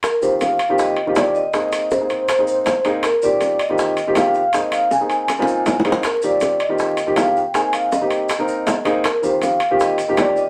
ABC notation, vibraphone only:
X:1
M:4/4
L:1/8
Q:1/4=160
K:Eb
V:1 name="Vibraphone"
B c f2 e2 d e- | e2 c2 c3 z | B d2 e3 f f | e f a4- a z |
B d2 e3 f g | a f e4- e z | B c f2 e2 d e |]